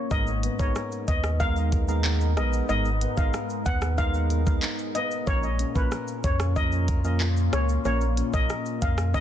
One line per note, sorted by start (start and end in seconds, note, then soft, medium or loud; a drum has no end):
0.11 0.48 G#1 loud
0.11 2.68 G#2 medium
0.11 0.31 G#3 loud
0.11 5.23 G#3 medium
0.11 0.31 B3 medium
0.11 5.23 B3 loud
0.11 0.31 D#4 medium
0.11 5.23 D#4 medium
0.11 0.31 A#4 loud
0.11 5.23 A#4 medium
0.11 0.22 D#5 loud
0.11 kick loud
0.11 shaker medium
0.27 shaker medium
0.43 1.07 B3 medium
0.43 closed hi-hat medium
0.43 shaker medium
0.43 shaker soft
0.59 0.72 G#1 medium
0.59 0.79 G#3 medium
0.59 0.79 B3 medium
0.59 0.79 D#4 medium
0.59 0.80 A#4 medium
0.59 0.71 C#5 medium
0.59 kick loud
0.59 shaker medium
0.75 1.72 A#4 medium
0.75 cross-stick medium
0.75 shaker medium
0.92 shaker medium
1.08 2.38 D#2 loud
1.08 2.36 B3 medium
1.08 1.19 D#5 medium
1.08 kick medium
1.08 closed hi-hat medium
1.08 shaker medium
1.08 shaker soft
1.24 cross-stick loud
1.24 shaker medium
1.40 1.84 G#3 medium
1.40 1.85 B3 medium
1.40 1.85 D#4 medium
1.40 1.85 A#4 loud
1.40 1.85 F5 loud
1.40 kick medium
1.40 shaker medium
1.56 shaker medium
1.72 3.33 A#4 medium
1.72 kick loud
1.72 closed hi-hat medium
1.72 shaker medium
1.88 2.33 G#3 medium
1.88 2.33 B3 medium
1.88 2.33 D#4 medium
1.88 2.33 A#4 medium
1.88 shaker medium
1.88 shaker loud
2.04 3.97 D#4 medium
2.04 clap medium
2.04 shaker medium
2.21 shaker medium
2.36 2.62 A#1 loud
2.36 2.66 G#3 medium
2.36 2.66 B3 medium
2.36 3.00 B3 medium
2.36 2.67 D#4 medium
2.36 2.67 A#4 medium
2.36 2.48 D#5 medium
2.36 cross-stick loud
2.36 closed hi-hat medium
2.36 shaker medium
2.53 shaker medium
2.69 3.06 G#1 loud
2.69 5.27 G#2 medium
2.69 2.89 G#3 loud
2.69 2.89 B3 medium
2.69 2.89 D#4 medium
2.69 2.89 A#4 loud
2.69 2.80 D#5 loud
2.69 shaker medium
2.85 shaker medium
2.85 shaker soft
3.01 3.65 B3 medium
3.01 closed hi-hat medium
3.01 shaker soft
3.01 shaker medium
3.17 3.30 G#1 medium
3.17 3.37 G#3 medium
3.17 3.37 B3 medium
3.17 3.37 D#4 medium
3.17 3.38 A#4 medium
3.17 3.29 F5 medium
3.17 kick loud
3.17 shaker medium
3.34 4.30 A#4 medium
3.34 cross-stick medium
3.34 shaker medium
3.49 shaker medium
3.66 4.59 D#2 medium
3.66 4.94 B3 medium
3.66 3.77 F#5 medium
3.66 kick loud
3.66 closed hi-hat medium
3.66 shaker medium
3.66 shaker soft
3.82 cross-stick loud
3.82 shaker medium
3.98 4.42 G#3 loud
3.98 4.43 B3 medium
3.98 4.62 D#4 medium
3.98 4.43 D#4 medium
3.98 4.43 A#4 loud
3.98 4.44 F5 loud
3.98 kick medium
3.98 shaker medium
4.14 shaker medium
4.30 5.91 A#4 medium
4.30 closed hi-hat medium
4.30 shaker medium
4.46 4.66 G#3 medium
4.46 4.66 B3 medium
4.46 4.67 D#4 medium
4.46 4.67 A#4 medium
4.46 kick loud
4.46 shaker medium
4.62 5.34 D#4 medium
4.62 clap medium
4.62 high timbale soft
4.62 shaker medium
4.79 shaker medium
4.95 5.34 B3 medium
4.95 5.06 D#5 medium
4.95 closed hi-hat medium
4.95 high timbale medium
4.95 shaker medium
5.11 shaker medium
5.27 5.64 A#1 loud
5.27 7.84 A#2 medium
5.27 5.47 F3 medium
5.27 5.47 A#3 medium
5.27 9.20 A#3 medium
5.27 5.47 C#4 medium
5.27 9.20 C#4 medium
5.27 9.20 F4 loud
5.27 5.47 A#4 loud
5.27 5.38 C#5 loud
5.27 kick loud
5.27 shaker medium
5.43 shaker soft
5.43 shaker medium
5.59 6.23 C#4 medium
5.59 closed hi-hat medium
5.59 shaker medium
5.59 shaker soft
5.75 5.88 A#1 medium
5.75 5.95 F3 medium
5.75 5.95 A#3 medium
5.75 5.96 C#4 medium
5.75 5.96 A#4 medium
5.75 5.87 B4 medium
5.75 kick loud
5.75 shaker medium
5.91 6.88 A#4 medium
5.91 cross-stick medium
5.91 shaker medium
6.08 shaker medium
6.24 7.49 F2 medium
6.24 7.52 C#4 medium
6.24 6.35 C#5 medium
6.24 kick loud
6.24 closed hi-hat medium
6.24 shaker medium
6.24 shaker soft
6.40 cross-stick loud
6.40 shaker medium
6.56 7.01 F3 loud
6.56 7.01 A#3 medium
6.56 7.01 C#4 medium
6.56 7.20 F4 medium
6.56 7.01 A#4 loud
6.56 7.02 D#5 loud
6.56 kick medium
6.56 shaker medium
6.72 shaker medium
6.88 8.49 A#4 medium
6.88 kick loud
6.88 closed hi-hat medium
6.88 shaker medium
7.04 7.24 F3 medium
7.04 7.25 A#3 medium
7.04 7.25 C#4 medium
7.04 7.25 A#4 medium
7.04 shaker medium
7.20 9.13 F4 medium
7.20 clap medium
7.20 shaker medium
7.37 shaker medium
7.53 7.78 C#2 medium
7.53 8.16 C#4 medium
7.53 7.64 C#5 medium
7.53 cross-stick loud
7.53 closed hi-hat medium
7.53 shaker medium
7.69 shaker medium
7.85 8.22 A#1 loud
7.85 9.20 A#2 medium
7.85 8.05 F3 medium
7.85 8.05 A#3 medium
7.85 8.05 C#4 medium
7.85 8.05 A#4 loud
7.85 7.96 C#5 loud
7.85 shaker medium
8.01 shaker medium
8.17 8.81 C#4 medium
8.17 closed hi-hat medium
8.17 shaker medium
8.17 shaker soft
8.33 8.46 A#1 loud
8.33 8.53 F3 medium
8.33 8.54 A#3 medium
8.33 8.54 C#4 medium
8.33 8.54 A#4 medium
8.33 8.45 D#5 medium
8.33 kick loud
8.33 shaker medium
8.50 9.20 A#4 medium
8.50 cross-stick medium
8.50 shaker medium
8.66 shaker medium
8.82 9.20 F2 medium
8.82 9.20 C#4 medium
8.82 8.93 F5 medium
8.82 kick loud
8.82 closed hi-hat medium
8.82 shaker medium
8.82 shaker soft
8.98 cross-stick loud
8.98 shaker medium
9.14 9.20 F3 loud
9.14 9.20 A#3 medium
9.14 9.20 C#4 medium
9.14 9.20 F4 medium
9.14 9.20 A#4 loud
9.14 9.20 D#5 loud
9.14 kick medium
9.14 shaker medium